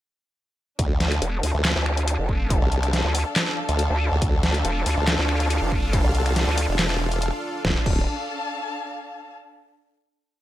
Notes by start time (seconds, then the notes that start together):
0.79 D2 D4, kick, closed hi-hat
0.94 A4
1.00 snare, closed hi-hat
1.05 F5
1.12 finger snap, closed hi-hat
1.22 E1, closed hi-hat
1.43 D2, open hi-hat
1.54 D2 A5
1.65 finger snap, snare, clap, closed hi-hat
1.76 D2
1.86 finger snap
1.97 closed hi-hat
2.08 closed hi-hat
2.19 F1
2.29 kick
2.50 kick, closed hi-hat
2.62 C2
2.72 closed hi-hat
2.83 finger snap, closed hi-hat
2.93 snare, closed hi-hat
3.04 D2
3.15 open hi-hat
3.36 snare, clap, closed hi-hat
3.47 finger snap
3.69 D2, closed hi-hat
3.79 closed hi-hat
3.90 D2
4.12 D2
4.22 D2 D4 F4 A4 F5, kick, closed hi-hat
4.43 snare, closed hi-hat
4.54 finger snap, closed hi-hat
4.65 E1, closed hi-hat
4.86 D2, open hi-hat
4.97 D2
5.07 finger snap, snare, clap, closed hi-hat
5.19 D2
5.29 finger snap
5.40 closed hi-hat
5.50 closed hi-hat
5.62 F1
5.72 kick
5.93 kick, closed hi-hat
6.04 C2
6.15 closed hi-hat
6.26 finger snap, closed hi-hat
6.36 snare, closed hi-hat
6.47 D2
6.58 open hi-hat
6.69 E1
6.79 snare, clap, closed hi-hat
6.90 finger snap
7.12 closed hi-hat
7.22 closed hi-hat
7.65 D1 D4 F4 A4 F5, kick, snare
7.71 A4
7.78 F5
7.84 D1 A5, kick, crash